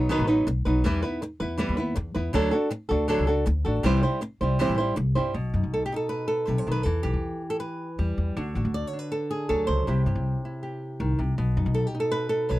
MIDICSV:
0, 0, Header, 1, 4, 480
1, 0, Start_track
1, 0, Tempo, 375940
1, 1080, Time_signature, 4, 2, 24, 8
1, 16079, End_track
2, 0, Start_track
2, 0, Title_t, "Nylon-string guitar"
2, 0, Program_c, 0, 24
2, 117, Note_on_c, 0, 47, 73
2, 121, Note_on_c, 0, 51, 82
2, 131, Note_on_c, 0, 54, 84
2, 137, Note_on_c, 0, 59, 83
2, 138, Note_on_c, 0, 63, 85
2, 146, Note_on_c, 0, 71, 86
2, 335, Note_off_c, 0, 71, 0
2, 344, Note_off_c, 0, 63, 0
2, 350, Note_on_c, 0, 71, 60
2, 351, Note_off_c, 0, 47, 0
2, 352, Note_off_c, 0, 59, 0
2, 353, Note_off_c, 0, 51, 0
2, 358, Note_off_c, 0, 54, 0
2, 359, Note_on_c, 0, 63, 65
2, 367, Note_on_c, 0, 59, 49
2, 376, Note_on_c, 0, 54, 50
2, 587, Note_off_c, 0, 71, 0
2, 591, Note_off_c, 0, 63, 0
2, 592, Note_off_c, 0, 59, 0
2, 593, Note_off_c, 0, 54, 0
2, 833, Note_on_c, 0, 71, 59
2, 847, Note_on_c, 0, 63, 56
2, 855, Note_on_c, 0, 59, 49
2, 863, Note_on_c, 0, 54, 46
2, 1067, Note_off_c, 0, 71, 0
2, 1072, Note_on_c, 0, 52, 84
2, 1073, Note_off_c, 0, 63, 0
2, 1075, Note_off_c, 0, 59, 0
2, 1076, Note_off_c, 0, 54, 0
2, 1081, Note_on_c, 0, 55, 75
2, 1090, Note_on_c, 0, 59, 92
2, 1097, Note_on_c, 0, 64, 84
2, 1101, Note_on_c, 0, 71, 89
2, 1294, Note_off_c, 0, 71, 0
2, 1305, Note_off_c, 0, 52, 0
2, 1309, Note_on_c, 0, 71, 62
2, 1310, Note_off_c, 0, 55, 0
2, 1310, Note_off_c, 0, 64, 0
2, 1314, Note_off_c, 0, 59, 0
2, 1325, Note_on_c, 0, 64, 54
2, 1339, Note_on_c, 0, 59, 47
2, 1543, Note_off_c, 0, 71, 0
2, 1551, Note_off_c, 0, 59, 0
2, 1551, Note_off_c, 0, 64, 0
2, 1786, Note_on_c, 0, 71, 61
2, 1809, Note_on_c, 0, 64, 55
2, 1816, Note_on_c, 0, 59, 49
2, 2012, Note_on_c, 0, 52, 81
2, 2013, Note_off_c, 0, 59, 0
2, 2014, Note_off_c, 0, 64, 0
2, 2020, Note_on_c, 0, 55, 85
2, 2021, Note_off_c, 0, 71, 0
2, 2028, Note_on_c, 0, 59, 84
2, 2029, Note_on_c, 0, 64, 94
2, 2040, Note_on_c, 0, 71, 94
2, 2243, Note_off_c, 0, 71, 0
2, 2253, Note_off_c, 0, 52, 0
2, 2257, Note_off_c, 0, 55, 0
2, 2258, Note_on_c, 0, 71, 62
2, 2261, Note_off_c, 0, 59, 0
2, 2261, Note_off_c, 0, 64, 0
2, 2274, Note_on_c, 0, 64, 54
2, 2292, Note_on_c, 0, 59, 50
2, 2492, Note_off_c, 0, 59, 0
2, 2493, Note_off_c, 0, 64, 0
2, 2495, Note_off_c, 0, 71, 0
2, 2739, Note_on_c, 0, 71, 58
2, 2751, Note_on_c, 0, 64, 56
2, 2765, Note_on_c, 0, 59, 51
2, 2974, Note_off_c, 0, 71, 0
2, 2975, Note_on_c, 0, 50, 90
2, 2981, Note_off_c, 0, 64, 0
2, 2983, Note_off_c, 0, 59, 0
2, 2985, Note_on_c, 0, 54, 95
2, 2988, Note_on_c, 0, 62, 90
2, 2997, Note_on_c, 0, 66, 90
2, 3002, Note_on_c, 0, 69, 89
2, 3192, Note_off_c, 0, 69, 0
2, 3208, Note_on_c, 0, 69, 62
2, 3211, Note_off_c, 0, 66, 0
2, 3212, Note_off_c, 0, 50, 0
2, 3217, Note_off_c, 0, 54, 0
2, 3218, Note_off_c, 0, 62, 0
2, 3227, Note_on_c, 0, 66, 54
2, 3237, Note_on_c, 0, 62, 49
2, 3448, Note_off_c, 0, 69, 0
2, 3450, Note_off_c, 0, 62, 0
2, 3450, Note_off_c, 0, 66, 0
2, 3687, Note_on_c, 0, 69, 56
2, 3706, Note_on_c, 0, 66, 46
2, 3719, Note_on_c, 0, 62, 43
2, 3927, Note_off_c, 0, 69, 0
2, 3928, Note_off_c, 0, 62, 0
2, 3932, Note_on_c, 0, 50, 88
2, 3937, Note_off_c, 0, 66, 0
2, 3938, Note_on_c, 0, 54, 85
2, 3943, Note_on_c, 0, 62, 90
2, 3951, Note_on_c, 0, 66, 81
2, 3953, Note_on_c, 0, 69, 93
2, 4160, Note_off_c, 0, 69, 0
2, 4169, Note_off_c, 0, 50, 0
2, 4172, Note_off_c, 0, 54, 0
2, 4175, Note_off_c, 0, 62, 0
2, 4175, Note_on_c, 0, 69, 60
2, 4178, Note_off_c, 0, 66, 0
2, 4194, Note_on_c, 0, 66, 60
2, 4202, Note_on_c, 0, 62, 51
2, 4408, Note_off_c, 0, 62, 0
2, 4410, Note_off_c, 0, 69, 0
2, 4412, Note_off_c, 0, 66, 0
2, 4656, Note_on_c, 0, 69, 57
2, 4670, Note_on_c, 0, 66, 54
2, 4692, Note_on_c, 0, 62, 50
2, 4890, Note_off_c, 0, 69, 0
2, 4894, Note_on_c, 0, 48, 89
2, 4898, Note_off_c, 0, 66, 0
2, 4900, Note_on_c, 0, 52, 87
2, 4907, Note_on_c, 0, 55, 89
2, 4908, Note_off_c, 0, 62, 0
2, 4917, Note_on_c, 0, 60, 83
2, 4923, Note_on_c, 0, 64, 83
2, 4927, Note_on_c, 0, 72, 97
2, 5128, Note_off_c, 0, 72, 0
2, 5129, Note_off_c, 0, 48, 0
2, 5132, Note_off_c, 0, 52, 0
2, 5136, Note_off_c, 0, 55, 0
2, 5136, Note_off_c, 0, 64, 0
2, 5141, Note_off_c, 0, 60, 0
2, 5143, Note_on_c, 0, 72, 61
2, 5152, Note_on_c, 0, 64, 54
2, 5161, Note_on_c, 0, 60, 53
2, 5170, Note_on_c, 0, 55, 44
2, 5369, Note_off_c, 0, 55, 0
2, 5373, Note_off_c, 0, 60, 0
2, 5374, Note_off_c, 0, 72, 0
2, 5378, Note_off_c, 0, 64, 0
2, 5628, Note_on_c, 0, 72, 53
2, 5640, Note_on_c, 0, 64, 50
2, 5650, Note_on_c, 0, 60, 52
2, 5656, Note_on_c, 0, 55, 45
2, 5856, Note_off_c, 0, 72, 0
2, 5858, Note_off_c, 0, 55, 0
2, 5861, Note_on_c, 0, 48, 83
2, 5862, Note_off_c, 0, 64, 0
2, 5864, Note_off_c, 0, 60, 0
2, 5868, Note_on_c, 0, 52, 89
2, 5874, Note_on_c, 0, 55, 81
2, 5879, Note_on_c, 0, 60, 86
2, 5890, Note_on_c, 0, 64, 87
2, 5891, Note_on_c, 0, 72, 82
2, 6084, Note_off_c, 0, 72, 0
2, 6093, Note_off_c, 0, 48, 0
2, 6094, Note_off_c, 0, 64, 0
2, 6096, Note_off_c, 0, 52, 0
2, 6099, Note_off_c, 0, 55, 0
2, 6099, Note_on_c, 0, 72, 62
2, 6102, Note_off_c, 0, 60, 0
2, 6109, Note_on_c, 0, 64, 60
2, 6124, Note_on_c, 0, 60, 50
2, 6130, Note_on_c, 0, 55, 47
2, 6329, Note_off_c, 0, 64, 0
2, 6330, Note_off_c, 0, 55, 0
2, 6330, Note_off_c, 0, 60, 0
2, 6332, Note_off_c, 0, 72, 0
2, 6580, Note_on_c, 0, 72, 56
2, 6588, Note_on_c, 0, 64, 51
2, 6602, Note_on_c, 0, 60, 46
2, 6608, Note_on_c, 0, 55, 42
2, 6812, Note_off_c, 0, 72, 0
2, 6817, Note_off_c, 0, 64, 0
2, 6823, Note_off_c, 0, 60, 0
2, 6823, Note_on_c, 0, 47, 72
2, 6826, Note_off_c, 0, 55, 0
2, 7080, Note_on_c, 0, 63, 43
2, 7323, Note_on_c, 0, 69, 80
2, 7473, Note_off_c, 0, 69, 0
2, 7478, Note_on_c, 0, 67, 77
2, 7548, Note_off_c, 0, 63, 0
2, 7564, Note_on_c, 0, 63, 43
2, 7609, Note_off_c, 0, 67, 0
2, 7614, Note_on_c, 0, 69, 81
2, 7778, Note_on_c, 0, 71, 89
2, 7999, Note_off_c, 0, 69, 0
2, 8014, Note_on_c, 0, 69, 80
2, 8226, Note_off_c, 0, 71, 0
2, 8241, Note_on_c, 0, 71, 92
2, 8268, Note_off_c, 0, 47, 0
2, 8282, Note_on_c, 0, 48, 58
2, 8403, Note_off_c, 0, 71, 0
2, 8403, Note_on_c, 0, 72, 92
2, 8516, Note_off_c, 0, 48, 0
2, 8522, Note_on_c, 0, 51, 63
2, 8569, Note_off_c, 0, 72, 0
2, 8574, Note_on_c, 0, 71, 90
2, 8706, Note_off_c, 0, 69, 0
2, 8722, Note_off_c, 0, 71, 0
2, 8722, Note_on_c, 0, 69, 93
2, 8730, Note_off_c, 0, 63, 0
2, 8749, Note_off_c, 0, 51, 0
2, 8754, Note_on_c, 0, 52, 74
2, 8976, Note_on_c, 0, 67, 90
2, 9458, Note_off_c, 0, 69, 0
2, 9576, Note_on_c, 0, 69, 80
2, 9697, Note_off_c, 0, 69, 0
2, 9702, Note_on_c, 0, 71, 81
2, 10067, Note_off_c, 0, 67, 0
2, 10198, Note_on_c, 0, 55, 60
2, 10649, Note_off_c, 0, 55, 0
2, 10650, Note_off_c, 0, 52, 0
2, 10671, Note_off_c, 0, 71, 0
2, 10683, Note_on_c, 0, 50, 76
2, 10688, Note_on_c, 0, 62, 51
2, 10699, Note_on_c, 0, 66, 50
2, 10915, Note_off_c, 0, 62, 0
2, 10923, Note_off_c, 0, 66, 0
2, 10931, Note_on_c, 0, 62, 43
2, 10939, Note_on_c, 0, 66, 44
2, 11163, Note_on_c, 0, 74, 93
2, 11329, Note_off_c, 0, 74, 0
2, 11329, Note_on_c, 0, 73, 92
2, 11390, Note_off_c, 0, 62, 0
2, 11405, Note_on_c, 0, 62, 42
2, 11475, Note_off_c, 0, 73, 0
2, 11475, Note_on_c, 0, 71, 84
2, 11635, Note_off_c, 0, 66, 0
2, 11640, Note_on_c, 0, 69, 89
2, 11876, Note_off_c, 0, 71, 0
2, 11882, Note_on_c, 0, 68, 81
2, 12103, Note_off_c, 0, 69, 0
2, 12118, Note_on_c, 0, 69, 90
2, 12124, Note_on_c, 0, 54, 66
2, 12341, Note_off_c, 0, 68, 0
2, 12346, Note_on_c, 0, 72, 89
2, 12576, Note_off_c, 0, 50, 0
2, 12576, Note_off_c, 0, 62, 0
2, 12600, Note_off_c, 0, 69, 0
2, 12603, Note_off_c, 0, 54, 0
2, 12605, Note_on_c, 0, 48, 76
2, 12614, Note_on_c, 0, 64, 53
2, 12623, Note_on_c, 0, 67, 53
2, 12833, Note_off_c, 0, 64, 0
2, 12841, Note_off_c, 0, 67, 0
2, 12849, Note_on_c, 0, 64, 44
2, 12856, Note_on_c, 0, 67, 46
2, 13326, Note_off_c, 0, 64, 0
2, 13342, Note_on_c, 0, 64, 44
2, 13554, Note_off_c, 0, 67, 0
2, 13569, Note_on_c, 0, 67, 46
2, 14044, Note_on_c, 0, 51, 58
2, 14267, Note_off_c, 0, 48, 0
2, 14277, Note_off_c, 0, 72, 0
2, 14283, Note_on_c, 0, 48, 59
2, 14284, Note_off_c, 0, 51, 0
2, 14499, Note_off_c, 0, 67, 0
2, 14505, Note_off_c, 0, 64, 0
2, 14524, Note_off_c, 0, 48, 0
2, 14530, Note_on_c, 0, 47, 75
2, 14774, Note_on_c, 0, 63, 41
2, 14996, Note_on_c, 0, 69, 82
2, 15152, Note_off_c, 0, 69, 0
2, 15152, Note_on_c, 0, 67, 78
2, 15237, Note_off_c, 0, 63, 0
2, 15252, Note_on_c, 0, 63, 44
2, 15316, Note_off_c, 0, 67, 0
2, 15321, Note_on_c, 0, 69, 87
2, 15469, Note_on_c, 0, 71, 98
2, 15681, Note_off_c, 0, 69, 0
2, 15696, Note_on_c, 0, 69, 89
2, 15929, Note_off_c, 0, 71, 0
2, 15944, Note_on_c, 0, 71, 97
2, 15954, Note_on_c, 0, 54, 63
2, 16079, Note_off_c, 0, 47, 0
2, 16079, Note_off_c, 0, 54, 0
2, 16079, Note_off_c, 0, 63, 0
2, 16079, Note_off_c, 0, 69, 0
2, 16079, Note_off_c, 0, 71, 0
2, 16079, End_track
3, 0, Start_track
3, 0, Title_t, "Upright bass"
3, 0, Program_c, 1, 32
3, 0, Note_on_c, 1, 35, 81
3, 223, Note_off_c, 1, 35, 0
3, 244, Note_on_c, 1, 33, 84
3, 577, Note_off_c, 1, 33, 0
3, 598, Note_on_c, 1, 35, 88
3, 822, Note_off_c, 1, 35, 0
3, 844, Note_on_c, 1, 35, 91
3, 1065, Note_off_c, 1, 35, 0
3, 1079, Note_on_c, 1, 40, 98
3, 1301, Note_off_c, 1, 40, 0
3, 1791, Note_on_c, 1, 40, 91
3, 2126, Note_off_c, 1, 40, 0
3, 2154, Note_on_c, 1, 39, 87
3, 2487, Note_off_c, 1, 39, 0
3, 2509, Note_on_c, 1, 40, 90
3, 2732, Note_off_c, 1, 40, 0
3, 2752, Note_on_c, 1, 40, 85
3, 2974, Note_off_c, 1, 40, 0
3, 2991, Note_on_c, 1, 38, 101
3, 3212, Note_off_c, 1, 38, 0
3, 3711, Note_on_c, 1, 38, 92
3, 4043, Note_off_c, 1, 38, 0
3, 4071, Note_on_c, 1, 37, 83
3, 4402, Note_off_c, 1, 37, 0
3, 4428, Note_on_c, 1, 38, 89
3, 4649, Note_off_c, 1, 38, 0
3, 4671, Note_on_c, 1, 33, 86
3, 4891, Note_off_c, 1, 33, 0
3, 4903, Note_on_c, 1, 36, 92
3, 5126, Note_off_c, 1, 36, 0
3, 5627, Note_on_c, 1, 36, 85
3, 5960, Note_off_c, 1, 36, 0
3, 5988, Note_on_c, 1, 33, 81
3, 6321, Note_off_c, 1, 33, 0
3, 6349, Note_on_c, 1, 36, 88
3, 6569, Note_off_c, 1, 36, 0
3, 6587, Note_on_c, 1, 43, 79
3, 6809, Note_off_c, 1, 43, 0
3, 6823, Note_on_c, 1, 35, 87
3, 7047, Note_off_c, 1, 35, 0
3, 7068, Note_on_c, 1, 42, 87
3, 7178, Note_off_c, 1, 42, 0
3, 7195, Note_on_c, 1, 35, 79
3, 7413, Note_off_c, 1, 35, 0
3, 8273, Note_on_c, 1, 35, 86
3, 8494, Note_off_c, 1, 35, 0
3, 8512, Note_on_c, 1, 35, 79
3, 8734, Note_off_c, 1, 35, 0
3, 8754, Note_on_c, 1, 40, 90
3, 8976, Note_off_c, 1, 40, 0
3, 8990, Note_on_c, 1, 35, 88
3, 9102, Note_off_c, 1, 35, 0
3, 9110, Note_on_c, 1, 40, 82
3, 9334, Note_off_c, 1, 40, 0
3, 10197, Note_on_c, 1, 40, 89
3, 10420, Note_off_c, 1, 40, 0
3, 10440, Note_on_c, 1, 40, 84
3, 10662, Note_off_c, 1, 40, 0
3, 10681, Note_on_c, 1, 38, 92
3, 10902, Note_off_c, 1, 38, 0
3, 10920, Note_on_c, 1, 33, 87
3, 11030, Note_off_c, 1, 33, 0
3, 11041, Note_on_c, 1, 38, 88
3, 11263, Note_off_c, 1, 38, 0
3, 12128, Note_on_c, 1, 38, 91
3, 12348, Note_off_c, 1, 38, 0
3, 12362, Note_on_c, 1, 37, 85
3, 12585, Note_off_c, 1, 37, 0
3, 12612, Note_on_c, 1, 36, 92
3, 12831, Note_off_c, 1, 36, 0
3, 12845, Note_on_c, 1, 43, 83
3, 12955, Note_off_c, 1, 43, 0
3, 12965, Note_on_c, 1, 36, 87
3, 13187, Note_off_c, 1, 36, 0
3, 14044, Note_on_c, 1, 36, 92
3, 14267, Note_off_c, 1, 36, 0
3, 14291, Note_on_c, 1, 36, 77
3, 14511, Note_off_c, 1, 36, 0
3, 14528, Note_on_c, 1, 35, 91
3, 14750, Note_off_c, 1, 35, 0
3, 14771, Note_on_c, 1, 42, 94
3, 14880, Note_off_c, 1, 42, 0
3, 14885, Note_on_c, 1, 35, 89
3, 15108, Note_off_c, 1, 35, 0
3, 15967, Note_on_c, 1, 35, 88
3, 16079, Note_off_c, 1, 35, 0
3, 16079, End_track
4, 0, Start_track
4, 0, Title_t, "Muted nylon-string guitar strokes"
4, 597, Note_on_c, 9, 29, 77
4, 724, Note_off_c, 9, 29, 0
4, 1558, Note_on_c, 9, 29, 67
4, 1685, Note_off_c, 9, 29, 0
4, 2496, Note_on_c, 9, 29, 73
4, 2624, Note_off_c, 9, 29, 0
4, 3453, Note_on_c, 9, 29, 68
4, 3581, Note_off_c, 9, 29, 0
4, 4414, Note_on_c, 9, 29, 67
4, 4542, Note_off_c, 9, 29, 0
4, 5377, Note_on_c, 9, 29, 61
4, 5505, Note_off_c, 9, 29, 0
4, 6333, Note_on_c, 9, 29, 67
4, 6461, Note_off_c, 9, 29, 0
4, 16079, End_track
0, 0, End_of_file